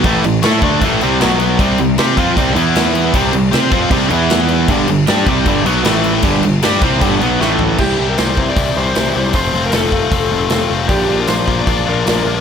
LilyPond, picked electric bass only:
\new Staff \with { instrumentName = "Picked electric bass" } { \clef bass \time 4/4 \key c \major \tempo 4 = 155 a,,8 a,,8 a,8 d,8 a,,8 c,8 b,,4 | c,8 c,8 c8 f,8 c,8 e,4. | c,8 c,8 c8 f,8 c,8 e,4. | g,,8 g,,8 g,8 c,8 g,,8 b,,8 a,,4 |
g,,8 g,,8 g,8 c,8 g,,8 b,,8 a,,4 | \key c \mixolydian c,8 c,8 c,4 c,8 c,8 c,8 c,8 | f,,8 f,,8 f,,4 f,,8 f,,8 f,,8 f,,8 | bes,,8 bes,,8 bes,,4 bes,,8 bes,,8 bes,,8 bes,,8 | }